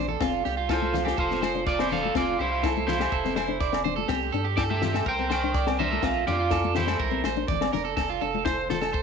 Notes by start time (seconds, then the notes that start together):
Already playing: A#1 D4
0.08 A4, low conga
0.20 F1 C4 F4, kick, snare, low agogo
0.45 C2 D4 G4, snare
0.57 F4
0.69 E4 F4 A4, kick, snare, low agogo
0.73 C5
0.82 high conga
0.94 F4, snare, low conga
1.05 G4, snare, high conga, low agogo
1.17 F1 F4 A4 C5, kick
1.31 C4, snare
1.42 C5, snare, high conga, low agogo
1.55 D4
1.67 F4 D5, kick, snare
1.79 C4 E4 C5, snare, low agogo
1.90 D4 A4 C5 F5, snare, low conga
2.03 A4, high conga
2.15 F1 C4 F4 D5, kick, snare, low agogo
2.39 C2 D4 E4 G4 C5
2.52 F4
2.63 E4 A4, kick, snare, low agogo
2.77 high conga
2.87 E4 F4 C5, snare, low conga
3.00 G4, snare, high conga, low agogo
3.12 F1 A4, kick
3.25 C4, snare
3.36 C5, snare, high conga, low agogo
3.48 D4
3.60 D5, kick, snare
3.72 C4, snare, low agogo
3.84 D4 C5, low conga
3.96 A4, high conga
4.08 C2 C4 G4, kick, snare, low agogo
4.32 G2 D4 A4
4.44 G4
4.57 E4 G4 A4 D5, kick, snare, low agogo
4.70 G4 E5, high conga
4.82 F4 G4, snare, low conga
4.94 A4, snare, high conga, low agogo
5.06 C2 A#4 C5 G5, kick
5.19 C4
5.30 A#4 C5 G5, snare, high conga, low agogo
5.44 D4
5.54 D5, kick, snare
5.67 C4, snare, low agogo
5.79 D4 A#4 C5 E5, low conga
5.91 A4, high conga
6.02 A#1 C4 F4, kick, snare, low agogo
6.27 F2 D4 F4 G4 D5, snare, low conga
6.39 F4
6.51 E4 A4, kick, snare, low agogo
6.65 high conga
6.75 E4 F4 G4 C5, snare, low conga
6.87 A4, snare, high conga, low agogo
6.99 A#1 A#4, kick
7.11 C4
7.23 A1 C5, snare, high conga, low agogo
7.37 D4
7.48 G1 D5, kick, snare, low conga
7.61 C4, snare, high conga, low agogo
7.73 F1 D4 A#4, snare, low conga
7.85 A4
7.97 F1 A4, muted steel-string acoustic guitar stroke, kick, snare, low agogo
8.10 F4
8.21 F1 D4 A4
8.35 high conga
8.45 E4 C5, kick, snare, low agogo
8.70 F4 A4 C5, snare, high conga, low conga
8.81 A4, snare, low agogo
8.93 C5, kick